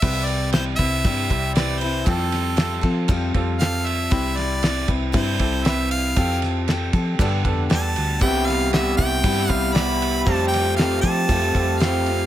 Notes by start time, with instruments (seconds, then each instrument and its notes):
0.00 fingered electric bass C2, steel-string acoustic guitar C3 G3 C4 E4 B4, grand piano C4 E4 G4 B4, harmonica E5, kick, crash
0.25 harmonica D5, crash
0.52 steel-string acoustic guitar G3 C4 E4 B4, harmonica C5, snare, crash
0.76 fingered electric bass C2, steel-string acoustic guitar E4 B4, harmonica E5, kick, crash
0.81 steel-string acoustic guitar C4
1.05 fingered electric bass G2, steel-string acoustic guitar C3 G3 C4 E4 B4, kick, crash
1.30 fingered electric bass C2, grand piano C4 E4 G4 C5, kick, crash
1.54 steel-string acoustic guitar G3 C4 E4, grand piano C4 E4 G4 B4, harmonica D5, snare, crash
1.58 steel-string acoustic guitar B4
1.79 steel-string acoustic guitar B4, harmonica C5, crash
1.84 steel-string acoustic guitar C4 E4
2.06 fingered electric bass F2, steel-string acoustic guitar F3 G3 C4 F4 A4, grand piano C4 F4 G4 A4, harmonica A4, kick, crash
2.32 snare, crash
2.56 steel-string acoustic guitar G3 C4 F4 A4, snare, crash
2.81 fingered electric bass F3, steel-string acoustic guitar C4 F4 A4, kick, crash
3.08 fingered electric bass F2, steel-string acoustic guitar F3 G3 C4 F4 A4, kick, crash
3.34 fingered electric bass F2, grand piano C4 F4 G4 A4, kick, crash
3.59 steel-string acoustic guitar G3 C4 F4 A4, grand piano C4 F4 G4 A4, harmonica F5, snare, crash
3.85 harmonica E5, crash
4.10 fingered electric bass C2, steel-string acoustic guitar C3 G3 C4 E4 B4, grand piano C4 E4 G4 B4, kick, crash
4.37 harmonica D5, snare, crash
4.62 steel-string acoustic guitar G3 C4 E4 B4, snare, crash
4.88 fingered electric bass C2, steel-string acoustic guitar C4 E4 B4, kick, crash
5.12 fingered electric bass G2, steel-string acoustic guitar C3 G3 C4 E4, harmonica C5, kick, crash
5.39 fingered electric bass C2, grand piano C4 E4 G4 A4, kick, crash
5.64 steel-string acoustic guitar G3 C4 E4, grand piano C4 E4 G4 B4, harmonica E5, snare, crash
5.68 steel-string acoustic guitar B4
5.91 harmonica F5, crash
6.16 fingered electric bass F2, steel-string acoustic guitar F3 C4 G4 A4, grand piano C4 F4 G4 A4, kick, crash
6.42 snare, crash
6.68 steel-string acoustic guitar F3 C4 G4 A4, snare, crash
6.93 fingered electric bass F3, steel-string acoustic guitar C4 G4 A4, kick, crash
7.19 fingered electric bass G2, steel-string acoustic guitar G2 D3 G3 B3 D4 A4, grand piano B3 D4 G4 A4, kick, crash
7.45 fingered electric bass F2, grand piano B3 D4 G4 A4, kick, crash
7.69 fingered electric bass E2, steel-string acoustic guitar G3 B3 D4 A4, grand piano B3 D4 G4 A4, snare, crash
7.74 harmonica A5
7.96 fingered electric bass D2, crash
8.20 fingered electric bass C2, steel-string acoustic guitar C3 G3 B3 E4 G4, clean electric guitar C3 E3 G3 B3 E4, grand piano E4 G4 B4, harmonica G5, kick, crash
8.46 harmonica F5, snare, crash
8.72 clean electric guitar C3 E3 G3 B3 E4, steel-string acoustic guitar G3 B3, harmonica E5, snare, crash
8.76 steel-string acoustic guitar E4 G4
8.97 fingered electric bass C2, clean electric guitar B3 E4, steel-string acoustic guitar E4 G4, harmonica G5, kick, crash
9.02 steel-string acoustic guitar B3
9.23 fingered electric bass G2, steel-string acoustic guitar C3 G3 B3 E4 G4, clean electric guitar E3 G3 B3 E4, kick, crash
9.49 fingered electric bass C2, clean electric guitar G3 B3 E4, grand piano C4 E4 G4 C5, harmonica F5, kick, crash
9.73 clean electric guitar E3 G3, steel-string acoustic guitar G3 B3, grand piano E4 G4 D5, harmonica B5, snare, crash
9.77 clean electric guitar B3 E4, steel-string acoustic guitar E4 G4
10.02 crash
10.23 fingered electric bass F2, steel-string acoustic guitar F3 G3, clean electric guitar F3 A3, grand piano C4 F4 G4 A4, harmonica A5, kick, crash
10.27 steel-string acoustic guitar C4 F4 A4, clean electric guitar C4 G4
10.48 harmonica G5
10.54 snare, crash
10.76 clean electric guitar F3 A3 C4 G4, steel-string acoustic guitar G3 C4 F4 A4, harmonica F5, snare, crash
11.01 fingered electric bass F3, clean electric guitar C4 G4, steel-string acoustic guitar A4, harmonica A5, kick, crash
11.05 clean electric guitar A3, steel-string acoustic guitar C4 F4
11.29 fingered electric bass F2, clean electric guitar F3 A3 C4 G4, steel-string acoustic guitar F3 G3 C4 F4 A4, kick, crash
11.55 fingered electric bass F2, grand piano C4 F4 G4 A4, clean electric guitar C4 G4, kick, crash
11.59 clean electric guitar A3
11.78 clean electric guitar F3, steel-string acoustic guitar G3, grand piano C4 F4 G4 A4, harmonica F5, snare, crash
11.82 clean electric guitar A3 C4 G4, steel-string acoustic guitar C4 F4 A4
12.06 steel-string acoustic guitar F4 A4, crash
12.11 steel-string acoustic guitar C4